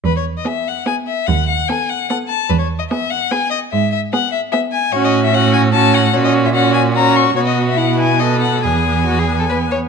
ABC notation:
X:1
M:3/4
L:1/16
Q:1/4=147
K:E
V:1 name="Violin"
B c2 d e2 f2 g2 e2 | f2 f2 g2 f2 f2 a2 | B c2 d e2 f2 g2 d2 | e2 e2 f2 e2 e2 g2 |
c d2 e f2 g2 a2 f2 | c d2 e f2 g2 ^a2 c'2 | c d2 e f2 g2 d2 f2 | g8- g2 z2 |]
V:2 name="Violin"
z4 G4 G4 | z4 A4 A4 | z4 G4 G4 | z4 G4 G4 |
F4 F4 F4 | F4 F4 F4 | F4 E4 A4 | G4 F G2 A B2 c2 |]
V:3 name="Viola"
z4 B,4 B,4 | z4 B,4 B,4 | z4 B,4 B,4 | z4 B,4 B,4 |
C4 C4 C4 | C4 C4 C4 | B,4 B,4 B,4 | B,8- B,2 z2 |]
V:4 name="Cello" clef=bass
E,,4 z8 | D,,4 z8 | E,,4 z8 | G,,4 z8 |
A,,12 | ^A,,12 | B,,12 | E,,8- E,,2 z2 |]